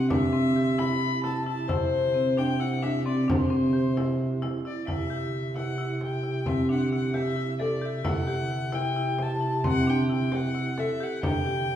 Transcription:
Already playing: bass clarinet C3, violin F#5
0.10 marimba D4, violin E5, frame drum
0.33 marimba C4
0.56 marimba G4
0.78 marimba E4, violin B5, frame drum
1.24 marimba E4, violin A5, frame drum
1.45 marimba E4, violin A5
1.68 bass clarinet C3, marimba E4, violin C5, frame drum
2.14 marimba C4
2.37 marimba D4, violin G5, frame drum
2.60 marimba E4, violin F#5
2.82 marimba D4, violin E5, frame drum
3.06 marimba C4, violin D5
3.28 bass clarinet C3, marimba D4, violin C5, frame drum
3.50 marimba C4
3.73 marimba G4, frame drum
3.97 marimba E4, frame drum
4.19 frame drum
4.42 marimba E4, frame drum
4.65 marimba E4, violin D5
4.87 bass clarinet C3, marimba E4, violin E5, frame drum
5.10 marimba G4
5.56 marimba E4, violin F#5, frame drum
5.78 marimba E4
6.01 violin G5, frame drum
6.23 marimba E4
6.46 marimba C4, violin E5, frame drum
6.69 marimba D4, violin F#5
6.93 marimba E4, violin F#5
7.14 marimba G4, violin E5, frame drum
7.36 marimba E4
7.60 marimba A4, violin D5, frame drum
7.82 marimba G4, violin E5
8.05 bass clarinet C3, marimba E4, violin F#5, frame drum
8.27 marimba G4
8.73 marimba E4, violin G5, frame drum
8.96 marimba E4
9.19 violin A5, frame drum
9.41 marimba E4
9.64 marimba C4, violin F#5, frame drum
9.87 marimba D4, violin G5, frame drum
10.10 marimba E4, violin G5
10.32 marimba G4, violin F#5, frame drum
10.55 marimba E4
10.78 marimba A4, violin E5, frame drum
11.01 marimba G4, violin F#5
11.23 bass clarinet C3, marimba D4, violin G5, frame drum
11.46 marimba G4

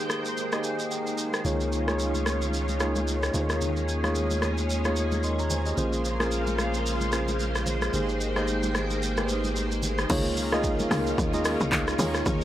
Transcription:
Already playing: string machine D#3 G#3 A#3 C5 G5, tine electric piano A#3 D#4 G4 G#4 C5
0.10 cross-stick, shaker
0.25 shaker
0.37 shaker
0.52 tine electric piano A#3 D#4 G4 G#4 D#5, cross-stick, shaker
0.64 tine electric piano G#5, shaker
0.79 shaker
0.91 tine electric piano G5, shaker
1.07 shaker
1.18 shaker
1.34 cross-stick, shaker
1.45 sub bass C#2, tine electric piano A#3 D#4 F4 G#4 C#5, string machine C#4 F4, low conga, shaker
1.61 shaker
1.73 shaker
1.88 tine electric piano A#3 D#4 F4 G#4 C#5, cross-stick, high conga, shaker
1.99 shaker
2.15 high conga, shaker
2.26 cross-stick, high conga, shaker
2.42 high conga, shaker
2.54 shaker
2.69 high conga, shaker
2.80 tine electric piano A#3 D#4 F4 G#4 C#5, cross-stick, shaker
2.96 high conga, shaker
3.08 shaker
3.23 cross-stick, shaker
3.34 sub bass D#2, string machine G#3 C#4 G#4, tine electric piano A#3 D#4 F4 G#4 C5, high conga, low conga, shaker
3.42 tine electric piano C#5
3.50 cross-stick, shaker
3.61 low conga, shaker
3.77 shaker
3.89 shaker
4.03 tine electric piano A#3 D#4 F4 G#4 C#5, cross-stick, high conga, shaker
4.15 shaker
4.31 high conga, shaker
4.42 cross-stick, high conga, shaker
4.58 high conga, shaker
4.70 shaker
4.85 tine electric piano A#3 D#4 F4 G#4 C#5, cross-stick, high conga, shaker
4.96 shaker
5.12 high conga, shaker
5.24 tine electric piano D#5 C6, shaker
5.39 tine electric piano C#5 A#5, shaker
5.50 tine electric piano C5 G#5, high conga, low conga, shaker
5.66 tine electric piano G4 D#5, shaker
5.77 sub bass A#1, string machine C#3 G#3 A#3 F4 C5, tine electric piano A#3 C#4 F4 G#4 C5, low conga, shaker
5.93 shaker
6.05 shaker
6.20 tine electric piano A#3 C#4 F4 G#4 A#4, cross-stick, high conga, shaker
6.31 shaker
6.47 high conga, shaker
6.58 cross-stick, high conga, shaker
6.74 high conga, shaker
6.86 shaker
7.01 high conga, shaker
7.12 tine electric piano A#3 C#4 F4 G#4 C5, cross-stick, shaker
7.28 high conga, shaker
7.40 shaker
7.55 cross-stick, shaker
7.66 high conga, low conga, shaker
7.82 cross-stick, shaker
7.93 sub bass G#1, string machine D#3 A#3 G5, tine electric piano A#3 D#4 G4 G#4 C5, low conga, shaker
8.09 shaker
8.21 shaker
8.36 tine electric piano A#3 D#4 G4 G#4 C5, cross-stick, high conga, shaker
8.48 shaker
8.63 high conga, shaker
8.75 cross-stick, high conga, shaker
8.90 high conga, shaker
9.03 shaker
9.17 tine electric piano A#3 D#4 G4 G#4 B4, cross-stick, high conga, shaker
9.25 tine electric piano C5, shaker
9.44 high conga, shaker
9.56 shaker
9.72 shaker
9.83 high conga, low conga, shaker
9.99 cross-stick, shaker
10.10 log drum bass C#2, string machine D#3 G#3 A#3 C#4 F4, tine electric piano A#3 D#4 F4 G#4 C#5, kick, crash, low conga, shaker
10.25 shaker
10.37 open hi-hat, shaker
10.52 tine electric piano A#3 D#4 F4 G#4 D#5, cross-stick, high conga, shaker
10.64 kick, shaker
10.79 high conga, shaker
10.91 log drum bass C#2, tine electric piano A#3 D#4 F4 G#4 A#4, cross-stick, open hi-hat, high conga, shaker
11.07 high conga, shaker
11.18 log drum bass D#2, kick, shaker
11.33 tine electric piano A#3 D#4 F4 G#4 D#5, high conga, shaker
11.45 cross-stick, open hi-hat, shaker
11.61 log drum bass C2, high conga, shaker
11.72 log drum bass C#2, kick, clap, shaker
11.88 cross-stick, shaker
11.98 log drum bass D#2, tine electric piano A#3 D#4 F4 G#4 C#5, string machine G#4, open hi-hat, high conga, low conga, shaker
12.14 cross-stick, shaker
12.26 log drum bass D#2, kick, low conga, shaker

